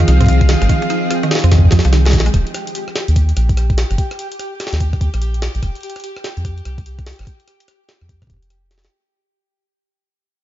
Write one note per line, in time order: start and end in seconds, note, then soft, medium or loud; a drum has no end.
0.00 0.07 D#3 loud
0.00 2.34 F3 medium
0.00 2.34 C4 medium
0.00 2.34 G#4 medium
0.00 2.34 D#5 medium
0.00 1.93 F5 loud
0.00 2.34 G5 medium
0.00 closed hi-hat soft
0.08 0.55 C2 medium
0.08 0.17 D#4 medium
0.08 cross-stick medium
0.08 closed hi-hat medium
0.21 0.28 C4 medium
0.21 kick medium
0.21 closed hi-hat soft
0.23 kick medium
0.24 kick medium
0.24 closed hi-hat soft
0.26 0.40 D#3 medium
0.26 kick medium
0.26 closed hi-hat medium
0.33 closed hi-hat soft
0.41 kick loud
0.41 cross-stick medium
0.41 closed hi-hat soft
0.49 0.55 D#3 medium
0.49 snare loud
0.49 closed hi-hat medium
0.62 0.67 G#1 loud
0.62 0.69 G#3 medium
0.62 cross-stick medium
0.62 closed hi-hat medium
0.69 0.79 D#3 medium
0.69 kick loud
0.69 closed hi-hat medium
0.82 0.86 F3 medium
0.82 closed hi-hat soft
0.90 0.99 D#4 medium
0.90 cross-stick medium
0.90 closed hi-hat medium
1.11 1.20 F4 medium
1.11 cross-stick medium
1.11 closed hi-hat medium
1.23 1.31 D#3 loud
1.23 closed hi-hat soft
1.31 1.41 D#4 medium
1.31 snare loud
1.31 closed hi-hat medium
1.35 snare medium
1.38 snare medium
1.44 1.68 F2 loud
1.44 1.51 C4 medium
1.44 cross-stick medium
1.44 closed hi-hat medium
1.52 1.64 D#3 medium
1.52 kick medium
1.52 snare medium
1.52 closed hi-hat medium
1.58 kick medium
1.65 kick medium
1.71 1.81 F2 loud
1.71 1.82 F3 medium
1.71 kick loud
1.71 snare medium
1.71 closed hi-hat medium
1.79 snare medium
1.85 2.15 C2 loud
1.85 1.91 F3 loud
1.85 closed hi-hat medium
1.93 2.02 D#3 medium
1.93 snare medium
1.93 closed hi-hat medium
2.05 2.09 G#3 medium
2.05 snare medium
2.05 closed hi-hat soft
2.10 snare medium
2.12 2.29 A#1 medium
2.12 2.25 D#3 medium
2.12 kick medium
2.12 snare medium
2.12 closed hi-hat medium
2.14 snare medium
2.17 snare soft
2.20 snare loud
2.20 snare soft
2.24 2.32 G#3 medium
2.24 snare soft
2.24 closed hi-hat medium
2.34 2.43 D#1 medium
2.34 8.92 G4 medium
2.34 8.92 G5 medium
2.34 kick loud
2.34 cross-stick medium
2.34 closed hi-hat medium
2.47 closed hi-hat soft
2.54 cross-stick medium
2.54 closed hi-hat medium
2.67 closed hi-hat medium
2.75 closed hi-hat medium
2.88 cross-stick medium
2.96 snare loud
2.96 closed hi-hat medium
3.08 3.33 D#2 medium
3.08 closed hi-hat medium
3.16 kick medium
3.16 closed hi-hat medium
3.29 closed hi-hat soft
3.37 3.84 A#1 medium
3.37 cross-stick medium
3.37 closed hi-hat medium
3.49 kick loud
3.49 closed hi-hat medium
3.57 cross-stick medium
3.57 closed hi-hat medium
3.70 kick loud
3.70 closed hi-hat soft
3.78 snare loud
3.78 closed hi-hat medium
3.90 3.96 G1 loud
3.90 cross-stick medium
3.90 closed hi-hat medium
3.98 kick loud
3.98 closed hi-hat medium
4.11 cross-stick medium
4.11 closed hi-hat soft
4.19 closed hi-hat medium
4.32 closed hi-hat medium
4.39 cross-stick medium
4.39 closed hi-hat medium
4.60 cross-stick medium
4.60 snare medium
4.60 closed hi-hat medium
4.67 snare medium
4.73 4.97 D#2 medium
4.73 snare medium
4.73 closed hi-hat medium
4.80 kick medium
4.80 closed hi-hat medium
4.93 kick loud
4.93 cross-stick soft
4.93 closed hi-hat soft
5.01 5.10 D#2 loud
5.01 kick loud
5.01 closed hi-hat medium
5.14 5.49 A#1 loud
5.14 cross-stick medium
5.14 closed hi-hat medium
5.22 closed hi-hat medium
5.34 closed hi-hat soft
5.42 cross-stick soft
5.42 snare loud
5.42 closed hi-hat medium
5.55 5.60 A#1 loud
5.55 closed hi-hat soft
5.63 5.71 F1 medium
5.63 kick loud
5.63 cross-stick medium
5.63 closed hi-hat medium
5.75 closed hi-hat soft
5.81 closed hi-hat soft
5.83 closed hi-hat medium
5.90 closed hi-hat medium
5.96 cross-stick soft
5.96 closed hi-hat medium
6.00 closed hi-hat soft
6.04 closed hi-hat medium
6.17 cross-stick medium
6.24 snare loud
6.24 closed hi-hat medium
6.37 6.62 F2 medium
6.37 closed hi-hat medium
6.45 kick medium
6.45 cross-stick soft
6.45 closed hi-hat medium
6.58 closed hi-hat soft
6.65 7.13 C2 medium
6.65 cross-stick medium
6.65 closed hi-hat medium
6.78 kick loud
6.78 closed hi-hat soft
6.86 closed hi-hat medium
6.99 kick loud
6.99 cross-stick soft
6.99 closed hi-hat soft
7.07 snare loud
7.07 closed hi-hat medium
7.10 closed hi-hat medium
7.13 closed hi-hat soft
7.16 7.25 G#1 medium
7.16 cross-stick medium
7.16 closed hi-hat soft
7.19 cross-stick medium
7.19 closed hi-hat soft
7.23 cross-stick soft
7.25 kick loud
7.25 cross-stick soft
7.25 closed hi-hat medium
7.40 closed hi-hat soft
7.48 cross-stick soft
7.48 closed hi-hat medium
7.60 closed hi-hat soft
7.68 cross-stick medium
7.68 closed hi-hat medium
7.89 snare loud
7.89 closed hi-hat medium
8.01 8.26 F2 medium
8.01 cross-stick soft
8.09 kick medium
8.09 closed hi-hat medium
8.22 kick loud
8.22 kick medium
8.22 cross-stick medium
8.22 closed hi-hat soft
8.27 kick medium
8.30 8.88 F1 medium
8.30 kick loud
8.30 closed hi-hat medium
8.34 kick soft
8.37 kick soft
8.43 closed hi-hat soft
8.50 cross-stick soft
8.50 closed hi-hat medium
8.71 snare soft
8.71 closed hi-hat medium
8.78 snare medium
8.84 snare medium
8.84 closed hi-hat soft